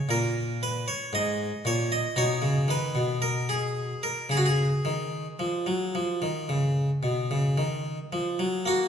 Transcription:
0, 0, Header, 1, 2, 480
1, 0, Start_track
1, 0, Tempo, 1038062
1, 43, Time_signature, 4, 2, 24, 8
1, 1483, Tempo, 1090909
1, 3979, End_track
2, 0, Start_track
2, 0, Title_t, "Harpsichord"
2, 0, Program_c, 0, 6
2, 0, Note_on_c, 0, 73, 64
2, 41, Note_on_c, 0, 46, 53
2, 46, Note_off_c, 0, 73, 0
2, 48, Note_on_c, 0, 70, 77
2, 284, Note_off_c, 0, 70, 0
2, 291, Note_on_c, 0, 71, 68
2, 386, Note_off_c, 0, 46, 0
2, 406, Note_off_c, 0, 71, 0
2, 406, Note_on_c, 0, 73, 54
2, 522, Note_on_c, 0, 44, 47
2, 523, Note_off_c, 0, 73, 0
2, 531, Note_on_c, 0, 75, 72
2, 694, Note_off_c, 0, 44, 0
2, 764, Note_off_c, 0, 75, 0
2, 764, Note_on_c, 0, 46, 42
2, 771, Note_on_c, 0, 73, 65
2, 884, Note_off_c, 0, 73, 0
2, 888, Note_on_c, 0, 75, 59
2, 933, Note_off_c, 0, 46, 0
2, 1000, Note_on_c, 0, 63, 29
2, 1001, Note_on_c, 0, 47, 49
2, 1002, Note_off_c, 0, 75, 0
2, 1007, Note_on_c, 0, 73, 69
2, 1113, Note_off_c, 0, 47, 0
2, 1119, Note_on_c, 0, 49, 38
2, 1233, Note_off_c, 0, 49, 0
2, 1240, Note_on_c, 0, 51, 39
2, 1243, Note_off_c, 0, 73, 0
2, 1250, Note_on_c, 0, 71, 56
2, 1355, Note_off_c, 0, 51, 0
2, 1364, Note_on_c, 0, 47, 37
2, 1453, Note_off_c, 0, 71, 0
2, 1488, Note_on_c, 0, 70, 54
2, 1604, Note_off_c, 0, 70, 0
2, 1608, Note_on_c, 0, 68, 47
2, 1798, Note_off_c, 0, 47, 0
2, 1845, Note_off_c, 0, 68, 0
2, 1846, Note_on_c, 0, 70, 49
2, 1947, Note_off_c, 0, 63, 0
2, 1962, Note_on_c, 0, 49, 35
2, 1965, Note_off_c, 0, 70, 0
2, 1969, Note_on_c, 0, 68, 50
2, 1994, Note_on_c, 0, 66, 41
2, 1999, Note_off_c, 0, 68, 0
2, 2028, Note_off_c, 0, 66, 0
2, 2033, Note_on_c, 0, 68, 45
2, 2138, Note_off_c, 0, 49, 0
2, 2206, Note_on_c, 0, 51, 33
2, 2382, Note_off_c, 0, 51, 0
2, 2445, Note_on_c, 0, 53, 34
2, 2564, Note_off_c, 0, 53, 0
2, 2565, Note_on_c, 0, 54, 30
2, 2683, Note_off_c, 0, 54, 0
2, 2690, Note_on_c, 0, 53, 34
2, 2805, Note_off_c, 0, 53, 0
2, 2808, Note_on_c, 0, 51, 30
2, 2924, Note_off_c, 0, 51, 0
2, 2928, Note_on_c, 0, 49, 33
2, 3102, Note_off_c, 0, 49, 0
2, 3164, Note_on_c, 0, 47, 34
2, 3281, Note_off_c, 0, 47, 0
2, 3288, Note_on_c, 0, 49, 32
2, 3403, Note_off_c, 0, 49, 0
2, 3405, Note_on_c, 0, 51, 33
2, 3579, Note_off_c, 0, 51, 0
2, 3647, Note_on_c, 0, 53, 30
2, 3652, Note_off_c, 0, 68, 0
2, 3762, Note_off_c, 0, 53, 0
2, 3765, Note_on_c, 0, 54, 33
2, 3879, Note_off_c, 0, 54, 0
2, 3880, Note_on_c, 0, 58, 44
2, 3888, Note_on_c, 0, 66, 59
2, 3979, Note_off_c, 0, 58, 0
2, 3979, Note_off_c, 0, 66, 0
2, 3979, End_track
0, 0, End_of_file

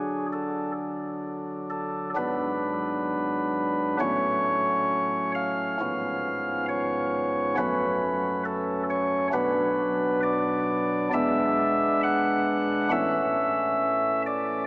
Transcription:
0, 0, Header, 1, 2, 480
1, 0, Start_track
1, 0, Key_signature, 3, "minor"
1, 0, Tempo, 920245
1, 1133, Time_signature, 4, 2, 24, 8
1, 2094, Tempo, 899550
1, 3054, Tempo, 882353
1, 4974, Tempo, 894188
1, 7832, End_track
2, 0, Start_track
2, 0, Title_t, "Pipe organ"
2, 0, Program_c, 0, 19
2, 0, Note_on_c, 0, 50, 55
2, 0, Note_on_c, 0, 54, 48
2, 0, Note_on_c, 0, 62, 47
2, 0, Note_on_c, 0, 68, 84
2, 136, Note_off_c, 0, 68, 0
2, 170, Note_on_c, 0, 69, 76
2, 375, Note_off_c, 0, 69, 0
2, 886, Note_on_c, 0, 69, 90
2, 1094, Note_off_c, 0, 69, 0
2, 1113, Note_off_c, 0, 54, 0
2, 1114, Note_off_c, 0, 50, 0
2, 1115, Note_off_c, 0, 62, 0
2, 1127, Note_on_c, 0, 44, 62
2, 1127, Note_on_c, 0, 59, 53
2, 1127, Note_on_c, 0, 62, 50
2, 1128, Note_on_c, 0, 54, 56
2, 1129, Note_on_c, 0, 32, 62
2, 1129, Note_on_c, 0, 71, 100
2, 2070, Note_off_c, 0, 44, 0
2, 2070, Note_off_c, 0, 54, 0
2, 2070, Note_off_c, 0, 59, 0
2, 2070, Note_off_c, 0, 62, 0
2, 2071, Note_off_c, 0, 32, 0
2, 2071, Note_off_c, 0, 71, 0
2, 2087, Note_on_c, 0, 54, 55
2, 2087, Note_on_c, 0, 57, 51
2, 2087, Note_on_c, 0, 73, 107
2, 2088, Note_on_c, 0, 33, 73
2, 2089, Note_on_c, 0, 61, 57
2, 2090, Note_on_c, 0, 45, 63
2, 2789, Note_off_c, 0, 73, 0
2, 2804, Note_on_c, 0, 77, 100
2, 3029, Note_off_c, 0, 57, 0
2, 3030, Note_off_c, 0, 33, 0
2, 3030, Note_off_c, 0, 54, 0
2, 3030, Note_off_c, 0, 61, 0
2, 3031, Note_off_c, 0, 45, 0
2, 3047, Note_on_c, 0, 53, 62
2, 3048, Note_on_c, 0, 44, 69
2, 3049, Note_on_c, 0, 59, 58
2, 3050, Note_on_c, 0, 32, 69
2, 3053, Note_on_c, 0, 61, 59
2, 3512, Note_off_c, 0, 77, 0
2, 3529, Note_on_c, 0, 73, 98
2, 3993, Note_off_c, 0, 53, 0
2, 3994, Note_off_c, 0, 32, 0
2, 3994, Note_off_c, 0, 44, 0
2, 3994, Note_off_c, 0, 59, 0
2, 3996, Note_off_c, 0, 61, 0
2, 3999, Note_off_c, 0, 73, 0
2, 4012, Note_on_c, 0, 30, 72
2, 4013, Note_on_c, 0, 57, 63
2, 4013, Note_on_c, 0, 71, 109
2, 4014, Note_on_c, 0, 42, 69
2, 4014, Note_on_c, 0, 61, 65
2, 4017, Note_on_c, 0, 54, 57
2, 4478, Note_off_c, 0, 71, 0
2, 4490, Note_on_c, 0, 69, 88
2, 4696, Note_off_c, 0, 69, 0
2, 4732, Note_on_c, 0, 73, 102
2, 4937, Note_off_c, 0, 73, 0
2, 4949, Note_off_c, 0, 30, 0
2, 4950, Note_off_c, 0, 42, 0
2, 4950, Note_off_c, 0, 57, 0
2, 4950, Note_off_c, 0, 61, 0
2, 4951, Note_off_c, 0, 54, 0
2, 4968, Note_on_c, 0, 71, 102
2, 4969, Note_on_c, 0, 35, 73
2, 4969, Note_on_c, 0, 47, 70
2, 4969, Note_on_c, 0, 54, 59
2, 4969, Note_on_c, 0, 59, 59
2, 4970, Note_on_c, 0, 62, 59
2, 5435, Note_off_c, 0, 71, 0
2, 5450, Note_on_c, 0, 74, 107
2, 5911, Note_off_c, 0, 35, 0
2, 5911, Note_off_c, 0, 47, 0
2, 5911, Note_off_c, 0, 54, 0
2, 5911, Note_off_c, 0, 59, 0
2, 5912, Note_off_c, 0, 62, 0
2, 5919, Note_off_c, 0, 74, 0
2, 5935, Note_on_c, 0, 62, 61
2, 5936, Note_on_c, 0, 28, 72
2, 5936, Note_on_c, 0, 59, 60
2, 5936, Note_on_c, 0, 76, 112
2, 5937, Note_on_c, 0, 56, 58
2, 5938, Note_on_c, 0, 40, 69
2, 6404, Note_off_c, 0, 76, 0
2, 6416, Note_on_c, 0, 78, 107
2, 6875, Note_off_c, 0, 28, 0
2, 6875, Note_off_c, 0, 59, 0
2, 6875, Note_off_c, 0, 62, 0
2, 6876, Note_off_c, 0, 40, 0
2, 6876, Note_off_c, 0, 56, 0
2, 6881, Note_off_c, 0, 78, 0
2, 6889, Note_on_c, 0, 33, 68
2, 6889, Note_on_c, 0, 61, 55
2, 6890, Note_on_c, 0, 52, 58
2, 6892, Note_on_c, 0, 57, 57
2, 6892, Note_on_c, 0, 76, 100
2, 6893, Note_on_c, 0, 45, 62
2, 7593, Note_off_c, 0, 76, 0
2, 7615, Note_on_c, 0, 74, 91
2, 7818, Note_off_c, 0, 74, 0
2, 7829, Note_off_c, 0, 33, 0
2, 7829, Note_off_c, 0, 52, 0
2, 7829, Note_off_c, 0, 61, 0
2, 7830, Note_off_c, 0, 57, 0
2, 7831, Note_off_c, 0, 45, 0
2, 7832, End_track
0, 0, End_of_file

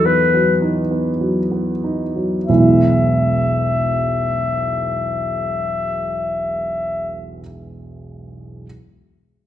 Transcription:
0, 0, Header, 1, 3, 480
1, 0, Start_track
1, 0, Key_signature, 4, "major"
1, 0, Tempo, 1151631
1, 500, Tempo, 1279318
1, 980, Time_signature, 3, 2, 24, 8
1, 980, Tempo, 1295896
1, 1940, Tempo, 1324503
1, 3533, End_track
2, 0, Start_track
2, 0, Title_t, "Clarinet"
2, 0, Program_c, 0, 71
2, 22, Note_on_c, 0, 71, 45
2, 256, Note_off_c, 0, 71, 0
2, 971, Note_on_c, 0, 76, 36
2, 2686, Note_off_c, 0, 76, 0
2, 3533, End_track
3, 0, Start_track
3, 0, Title_t, "Grand piano"
3, 0, Program_c, 1, 0
3, 0, Control_c, 1, 64, 127
3, 0, Note_on_c, 1, 40, 40
3, 0, Note_on_c, 1, 54, 27
3, 0, Note_on_c, 1, 63, 32
3, 23, Note_on_c, 1, 59, 28
3, 89, Note_off_c, 1, 54, 0
3, 142, Note_on_c, 1, 54, 28
3, 208, Note_off_c, 1, 59, 0
3, 259, Note_off_c, 1, 63, 0
3, 259, Note_on_c, 1, 63, 29
3, 330, Note_off_c, 1, 54, 0
3, 380, Note_on_c, 1, 59, 23
3, 452, Note_off_c, 1, 63, 0
3, 503, Note_on_c, 1, 54, 24
3, 570, Note_off_c, 1, 59, 0
3, 618, Note_on_c, 1, 59, 25
3, 689, Note_off_c, 1, 54, 0
3, 740, Note_on_c, 1, 63, 24
3, 812, Note_off_c, 1, 59, 0
3, 859, Note_on_c, 1, 54, 21
3, 934, Note_off_c, 1, 63, 0
3, 966, Note_off_c, 1, 40, 0
3, 980, Note_off_c, 1, 54, 0
3, 983, Note_on_c, 1, 28, 33
3, 984, Note_on_c, 1, 35, 26
3, 984, Note_on_c, 1, 52, 27
3, 986, Note_on_c, 1, 56, 27
3, 987, Note_on_c, 1, 59, 25
3, 988, Note_on_c, 1, 64, 27
3, 989, Control_c, 1, 64, 0
3, 1095, Control_c, 1, 64, 127
3, 2784, Note_off_c, 1, 28, 0
3, 2785, Note_off_c, 1, 52, 0
3, 2786, Note_off_c, 1, 35, 0
3, 2787, Note_off_c, 1, 56, 0
3, 2788, Note_off_c, 1, 59, 0
3, 2789, Note_off_c, 1, 64, 0
3, 3240, Control_c, 1, 64, 0
3, 3533, End_track
0, 0, End_of_file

